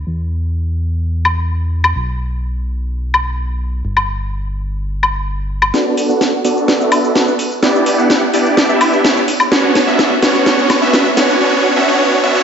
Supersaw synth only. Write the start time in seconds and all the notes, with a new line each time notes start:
5.74 B3 D4 F#4 A4 D5
6.09 B3 D4 F#4 A4 F#5
6.45 B3 D4 F#4 A4 D5
6.80 B3 D4 F#4 A4 E5
7.16 B3 D4 F#4 A4 B4
7.63 B3 D4 E4 G4 D5
7.98 B3 D4 E4 G4 F#5
8.34 B3 D4 E4 G4 D5
8.69 B3 D4 E4 G4 E5
9.04 B3 D4 E4 G4 C#5
9.52 B3 C#4 D4 F#4 C#5
9.87 B3 C#4 D4 F#4 E5
10.22 B3 C#4 D4 F#4 C#5
10.46 B3 C#4 D4 F#4 C#5
10.82 B3 C#4 D4 F#4 E5
11.17 B3 C#4 D4 F#4 C#5
11.41 B3 C#4 D4 F#4 C#5
11.76 B3 C#4 D4 F#4 E5
11.88 B3 C#4 D4 F#4 C#5
12.23 B3 C#4 D4 F#4 E5
12.35 B3 C#4 D4 F#4 C#5